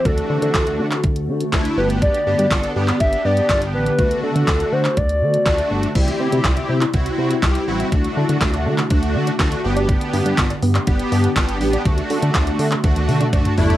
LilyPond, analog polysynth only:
\new Staff \with { instrumentName = "Analog polysynth" } { \time 4/4 \key d \mixolydian \tempo 4 = 122 <a d' fis'>4. r4. <a d' e'>8 <b d' g'>8~ | <b d' g'>8 <b d' g'>8 <b d' a'>8 <b d' g'>8 <b d' g'>8 <b d' g'>8 <b d' g'>4 | <a d' fis'>4. r4. <a d' fis'>4 | <c' e' g'>4. r8 <c' e' fis'>4 <c' e' g'>8 <c' e' fis'>8 |
<a d' fis'>4. r8 <a d' fis'>4 <a d' fis'>8 <b d' g'>8~ | <b d' g'>4 r4 <b d' g'>4 <b d' g'>8 <b d' g'>8 | <a d' fis'>4. r8 <a d' fis'>4 <a d' fis'>8 <a d' e'>8 | }